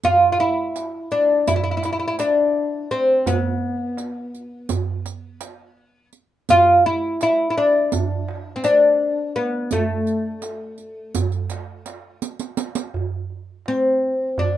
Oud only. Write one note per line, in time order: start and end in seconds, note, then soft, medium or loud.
0.05 0.31 F4 loud
0.32 0.40 F4 medium
0.40 1.08 E4 medium
1.12 1.47 D4 medium
1.48 1.55 E4 medium
1.56 1.62 E4 medium
1.64 1.70 E4 medium
1.71 1.76 E4 soft
1.77 1.84 E4 medium
1.85 1.91 E4 soft
1.93 1.98 E4 medium
1.99 2.06 E4 medium
2.08 2.15 E4 medium
2.20 2.91 D4 medium
2.91 3.28 C4 medium
3.27 6.09 B3 medium
6.50 6.86 F4 loud
6.86 7.22 E4 medium
7.23 7.49 E4 medium
7.50 7.57 E4 medium
7.58 8.55 D4 medium
8.56 8.63 C4 medium
8.64 9.32 D4 medium
9.36 9.72 B3 medium
9.72 12.18 A3 medium
13.68 14.40 C4 medium
14.39 14.57 D4 medium